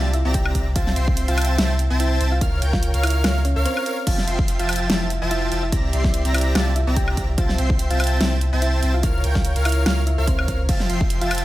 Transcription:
Already playing: C2 F4 F5
0.14 E4 E5, closed hi-hat
0.25 C2 C4 G4 D5 E5 A#5 A#6
0.34 G4 G5, kick, closed hi-hat
0.46 high woodblock
0.55 C2 C4 G4 D5 E5 A#5 A#6, kick, closed hi-hat
0.76 C2 C4 F4 C5 E5 F5 G5 A5 A6, kick, closed hi-hat
0.87 snare
0.96 C2 C4 C5 E5 G5 C6 C7, closed hi-hat
1.08 kick
1.17 closed hi-hat
1.28 C2 C4 F4 C5 E5 F5 G5 A5 A6, closed hi-hat
1.38 closed hi-hat, open hi-hat, high woodblock
1.45 closed hi-hat
1.58 C2 C4 E4 C5 E5 G5 A5 A6, snare, closed hi-hat
1.79 closed hi-hat
1.90 C2 C4 C5 E5 G5 A5 A6
2.00 E4 E5, closed hi-hat
2.21 C2 C4 C5 E5 G5 A5 A6, closed hi-hat
2.32 F4 F5
2.41 C#2 A#4 C#5 F5 F6, kick, closed hi-hat
2.62 C#2 A#4 C#5 G5 G6, closed hi-hat
2.73 F4 F5, kick, snare
2.83 closed hi-hat
2.94 C#2 A#4 C#5 F5 F6, closed hi-hat
3.03 E4 E5, closed hi-hat, open hi-hat, high woodblock
3.10 closed hi-hat
3.24 C#2 F4 A#4 C#5 F5 F6, snare, closed hi-hat, high woodblock
3.45 C#4 C#5, closed hi-hat
3.56 C#2 A#4 C#5 F5 F6
3.65 C4 C5, closed hi-hat
3.77 high woodblock
3.86 A#4 C#5 F5 F6, closed hi-hat
4.07 F1 F3 F4 E5 F5 G5 A5 A6, kick, closed hi-hat, crash
4.18 snare
4.27 F1 F3 F4 E5 G5 C6 C7, closed hi-hat
4.39 kick
4.48 closed hi-hat
4.59 F1 F3 F4 E5 F5 G5 A5 A6, closed hi-hat
4.69 closed hi-hat, open hi-hat, high woodblock
4.76 closed hi-hat
4.89 F1 F3 E4 F4 E5 G5 A5 A6, snare, closed hi-hat
5.10 closed hi-hat
5.21 F1 F3 F4 E5 G5 A5 A6
5.31 E4 E5, closed hi-hat
5.52 F1 F3 F4 E5 G5 A5 A6, closed hi-hat
5.63 E4 E5
5.72 C2 C4 G4 D5 E5 A#5 A#6, kick, closed hi-hat
5.93 C2 C4 G4 D5 E5 C6 C7, closed hi-hat
6.04 E4 E5, kick, snare
6.14 closed hi-hat
6.25 C2 C4 G4 D5 E5 A#5 A#6, closed hi-hat
6.34 E4 E5, closed hi-hat, open hi-hat, high woodblock
6.41 closed hi-hat
6.55 C2 C4 F4 G4 D5 E5 F5 A5 A6, snare, closed hi-hat, high woodblock
6.76 E4 E5, closed hi-hat
6.87 C2 C4 G4 D5 E5 A#5 A#6
6.96 G4 G5, kick, closed hi-hat
7.08 high woodblock
7.17 C2 C4 G4 D5 E5 A#5 A#6, kick, closed hi-hat
7.38 C2 C4 F4 C5 E5 F5 G5 A5 A6, kick, closed hi-hat
7.49 snare
7.58 C2 C4 C5 E5 G5 C6 C7, closed hi-hat
7.70 kick
7.79 closed hi-hat
7.90 C2 C4 F4 C5 E5 F5 G5 A5 A6, closed hi-hat
8.00 closed hi-hat, open hi-hat, high woodblock
8.07 closed hi-hat
8.20 C2 C4 E4 C5 E5 G5 A5 A6, snare, closed hi-hat
8.41 closed hi-hat
8.53 C2 C4 C5 E5 G5 A5 A6
8.62 E4 E5, closed hi-hat
8.83 C2 C4 C5 E5 G5 A5 A6, closed hi-hat
8.94 F4 F5
9.03 C#2 A#4 C#5 F5 F6, kick, closed hi-hat
9.24 C#2 A#4 C#5 G5 G6, closed hi-hat
9.35 F4 F5, kick, snare
9.45 closed hi-hat
9.56 C#2 A#4 C#5 F5 F6, closed hi-hat
9.65 E4 E5, closed hi-hat, open hi-hat, high woodblock
9.72 closed hi-hat
9.86 C#2 F4 A#4 C#5 F5 F6, snare, closed hi-hat, high woodblock
10.07 E4 E5, closed hi-hat
10.18 C#2 A#4 C#5 F5 F6
10.27 C4 C5, kick, closed hi-hat
10.39 high woodblock
10.48 C#2 A#4 C#5 F5 F6, kick, closed hi-hat
10.69 F1 F3 F4 E5 F5 G5 A5 A6, kick, closed hi-hat, crash
10.80 snare
10.90 F1 F3 F4 E5 G5 C6 C7, closed hi-hat
11.01 kick
11.10 closed hi-hat
11.21 F1 F3 F4 E5 F5 G5 A5 A6, closed hi-hat
11.31 closed hi-hat, open hi-hat, high woodblock
11.38 closed hi-hat

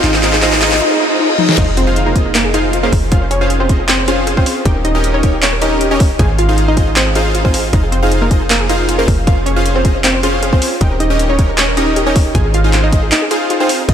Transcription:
Already playing: riser
0.04 G#1 D#4 F4 G#4 C5 D#5 F5, clap, closed hi-hat
0.14 G#4, clap
0.23 D#4 F4 G#4 C5 D#5 F5, clap, closed hi-hat
0.33 G#4, clap
0.42 D#4 F4 G#4 C5 D#5 F5, clap, closed hi-hat
0.52 G#4, clap
0.62 D#4 F4 G#4 C5 D#5 F5, clap, closed hi-hat
0.72 G#4, clap
0.81 D#4, reverse cymbal
0.91 G#4
1.00 D#4
1.10 G#4
1.19 D#4
1.30 G#4
1.39 D#4, high tom
1.49 G#4, snare
1.58 F1 D#4 F4 G#4 C5 D#5 F5, kick, closed hi-hat, crash, impact
1.68 G#4
1.77 C4 F4 C5, closed hi-hat
1.87 D#4 F4 G#4 C5 F5
1.96 closed hi-hat
2.06 A#3 D#4 A#4
2.16 D#4 F4 G#4 C5 D#5, kick, closed hi-hat
2.26 F4
2.35 A#3 A#4, clap, closed hi-hat
2.45 G#4
2.54 D#4 F4 G#4 C5 F5, closed hi-hat
2.73 F4, closed hi-hat
2.83 A#3 C#4 F4 G#4 A#4 C5 F5
2.92 F1 C5, kick, open hi-hat
3.11 C#4 F4 G#4 C5 F5, kick, closed hi-hat
3.22 C5
3.31 C#4 G#4 C#5, closed hi-hat
3.41 C#4 F4 G#4 C5 F5
3.50 closed hi-hat
3.60 C4 F4 C5
3.69 C#4 F4 G#4 C5 D#5, kick, closed hi-hat
3.80 G#4
3.88 C4 C5, clap, closed hi-hat
3.99 C5
4.08 C#4 F4 G#4 C5 F5, closed hi-hat
4.27 G#4, closed hi-hat
4.37 C4 C#4 F4 G#4 C5 F5, kick
4.46 C5, open hi-hat
4.65 D#1 C#4 D#4 G4 A#4 D#5 G5, kick, closed hi-hat
4.76 A#4
4.85 D#4 G4 D#5, closed hi-hat
4.95 C#4 D#4 G4 A#4 D#5
5.04 closed hi-hat
5.14 C#4 D#4 C#5
5.23 C#4 D#4 G4 A#4 C#5, kick, closed hi-hat
5.33 G4
5.42 C#4 C#5, clap, closed hi-hat
5.53 A#4
5.62 C#4 D#4 G4 A#4 D#5, closed hi-hat
5.81 G4, closed hi-hat
5.91 C#4 D#4 G4 A#4 C#5 D#5
6.00 A#4, kick, open hi-hat
6.19 G#1 D#4 F4 G#4 C5 F5 G#5, kick, closed hi-hat
6.30 G#4
6.39 F4 F5, closed hi-hat
6.49 D#4 F4 G#4 C5 F5
6.58 closed hi-hat
6.68 D#4 D#5
6.77 D#4 F4 G#4 C5 D#5, kick, closed hi-hat
6.87 F4
6.96 C4 C5, clap, closed hi-hat
7.06 G#4
7.15 D#4 F4 G#4 C5 F5, closed hi-hat
7.35 F4, closed hi-hat
7.45 C4 D#4 F4 G#4 C5 F5, kick
7.54 G#4, open hi-hat
7.73 F1 D#4 F4 G#4 C5 D#5 F5, kick, closed hi-hat
7.83 G#4
7.92 C4 F4 C5, closed hi-hat
8.03 D#4 F4 G#4 C5 F5
8.12 closed hi-hat
8.22 A#3 D#4 A#4
8.31 D#4 F4 G#4 C5 D#5, kick, closed hi-hat
8.41 G#4
8.50 A#3 A#4, clap, closed hi-hat
8.60 G#4
8.69 D#4 F4 G#4 C5 F5, closed hi-hat
8.89 F4, closed hi-hat
8.98 A#3 C#4 F4 G#4 A#4 C5 F5
9.08 F1 C5, kick, open hi-hat
9.27 C#4 F4 G#4 C5 F5, kick, closed hi-hat
9.37 C5
9.46 C#4 G#4 C#5, closed hi-hat
9.56 C#4 F4 G#4 C5 F5
9.66 closed hi-hat
9.76 C4 F4 C5
9.85 C#4 F4 G#4 C5 D#5, kick, closed hi-hat
9.95 C5
10.04 C4 C5, clap, closed hi-hat
10.14 C5
10.23 C#4 F4 G#4 C5 F5, closed hi-hat
10.43 G#4, closed hi-hat
10.53 C4 C#4 F4 G#4 C5 F5, kick
10.62 C5, open hi-hat
10.81 D#1 C#4 D#4 G4 A#4 D#5 G5, kick, closed hi-hat
10.91 A#4
11.00 D#4 G4 D#5, closed hi-hat
11.10 C#4 D#4 G4 A#4 D#5
11.19 closed hi-hat
11.30 C#4 D#4 C#5
11.39 C#4 D#4 G4 A#4 C#5, kick, closed hi-hat
11.49 A#4
11.58 C#4 C#5, clap, closed hi-hat
11.68 A#4
11.77 C#4 D#4 G4 A#4 D#5, closed hi-hat
11.96 G4, closed hi-hat
12.06 C#4 D#4 G4 A#4 C#5 D#5
12.16 A#4, kick, open hi-hat
12.35 G#1 D#4 F4 G#4 C5 F5 G#5, kick, closed hi-hat
12.45 G#4
12.54 F4 F5, closed hi-hat
12.64 D#4 F4 G#4 C5 F5
12.73 clap, closed hi-hat
12.84 D#4 D#5
12.92 D#4 F4 G#4 C5 D#5, kick, closed hi-hat
13.03 G#4
13.12 D#4 D#5, clap, closed hi-hat
13.22 G#4
13.31 D#4 F4 G#4 C5 F5, closed hi-hat
13.50 F4, closed hi-hat
13.60 C4 D#4 F4 G#4 C5 F5
13.69 C5, open hi-hat
13.89 F1 D#4 F4 G#4 C5 D#5 F5, kick, closed hi-hat, crash

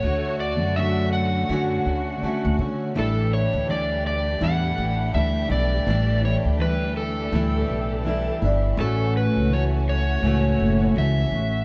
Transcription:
Already playing: A3 F#4 C#5
0.02 D2 D3 A3 F#4
0.40 D5
0.61 F#2
0.76 D3 A3 C#4 F#4 E5
1.13 F#5
1.49 F#2 D3 A3 C#4 F#4
1.85 D2
2.22 D3 A3 C#4 F#4, muted upright bass stroke
2.45 D2
2.58 D3 A3 C#4 F#4
2.94 A1 A2 E3 G3 A3 D4 E4 G4
2.99 A4
3.33 C#5
3.53 D2
3.67 E3 G3 D4 E4 D5
4.07 D5
4.40 E2 A2 E3 G3 D4 E4 F#5
4.78 A1
5.13 D2 E3 G3 D4 E4 E5
5.49 B1 G3 D4 E4 D5
5.86 A1 A2 E3 G3 D4 E4
6.22 G3 D4 E4 C#5
6.45 D2
6.58 E3 G3 D4 E4 B4
6.97 A4
7.32 D2 A2 E3 G3 D4 E4
7.69 B1
8.04 E3 G3 D4 E4
8.42 G1 G3 D4 E4
8.76 A1 A2 E3 A3 C#4 F#4
8.81 A4
9.17 B4
9.36 C#2
9.50 E3 A3 C#4 F#4 C#5
9.89 C#5
10.22 C#2 A2 E3 A3 C#4 F#4
10.60 F#1
10.95 C#2 E3 A3 C#4 F#4 E5
11.31 A1 C#4 F#4
11.35 A3

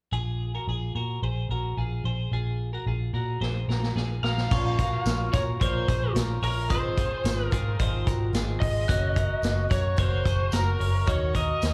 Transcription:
0.12 A#1 F4 G#4
0.55 F#4 A#4
0.68 A#1 F4 G#4
0.95 A#2 F#4 A#4
1.22 A#1 G#4 C5
1.49 A#1 F#4 A#4
1.77 A#1 F4 G#4
2.04 A#1 G#4 C5
2.32 A#1 F4 G#4
2.73 F#4 A#4
2.86 A#1 F4 G#4
3.13 A#2 F#4 A#4
3.41 A#1 G#4 C5, snare
3.68 A#1 F#4 A#4, snare
3.83 snare
3.96 A#1 F4 G#4, snare
4.23 A#1 F#4 A#4 F5, snare
4.38 snare
4.51 A#1 A#2 F3 A#3 C#4 F4 C#6, kick, crash, tambourine
4.78 A#3 C#4 F4 F#4 A#4, kick, closed hi-hat, tambourine
5.05 A#1 F3 A#3 C#4 F4, snare, closed hi-hat, tambourine
5.33 A#2 A#3 C#4 F4 F#4 A#4 C#5, kick, closed hi-hat, tambourine
5.61 A#1 A#2 F3 A#3 C#4 F4 A#4 C5 C#5, kick, closed hi-hat
5.88 A#1 F4 G#4 C5, kick, closed hi-hat, tambourine
6.15 A#1 F3 A#3 C#4 F4 A#4, snare, closed hi-hat, tambourine
6.42 A#1 A#3 C#4 F4 A#4 C#5, open hi-hat, tambourine
6.69 G#1 G#2 D#3 F3 G#3 C4 F4 C5 D#6, kick, closed hi-hat, tambourine
6.97 F3 G#3 C4 F4 G#4, kick, closed hi-hat, tambourine
7.24 G#1 F3 G#3 C4 F4, snare, closed hi-hat, tambourine
7.43 A#4
7.51 G#2 F3 G#3 C4 F4 G#4, kick, closed hi-hat, tambourine
7.79 G#1 G#2 D#3 F3 G#3 C4 F4 G#4 C5, kick, closed hi-hat
8.06 G#1 F3 G#3 C4 F4 F#4 A#4, kick, closed hi-hat, tambourine
8.33 G#1 F3 G#3 C4 F4 G#4, snare, closed hi-hat, tambourine
8.60 G#1 F3 G#3 C4 F4 D#5, kick, open hi-hat
8.87 F#1 F#2 C#3 F#3 A#3 C#4 F#4 F#6, kick, closed hi-hat, tambourine
9.14 F#3 A#3 C#4 F#4 A#4, kick, closed hi-hat, tambourine
9.42 F#1 F#3 A#3 C#4 F#4, snare, closed hi-hat, tambourine
9.69 F#2 F#3 A#3 C#4 F#4 A#4 C#5, kick, closed hi-hat, tambourine
9.97 F#1 F#2 C#3 F#3 A#3 C#4 F#4 A#4 C5 C#5, kick, closed hi-hat
10.24 F#1 F#3 A#3 C#4 F#4 G#4 C5, kick, closed hi-hat, tambourine
10.51 F#1 F#3 A#3 C#4 F#4 A#4, snare, closed hi-hat, tambourine
10.78 F#1 F#3 A#3 C#4 F#4 A#4 C#5, open hi-hat
11.06 D#2 D#3 A#3 D#4 F#4 C#5 F6, kick, closed hi-hat, tambourine
11.34 A#3 D#4 F#4 A#4 D#5, kick, closed hi-hat, tambourine
11.61 D#2 D#3 A#3 D#4 F#4, snare, closed hi-hat, tambourine

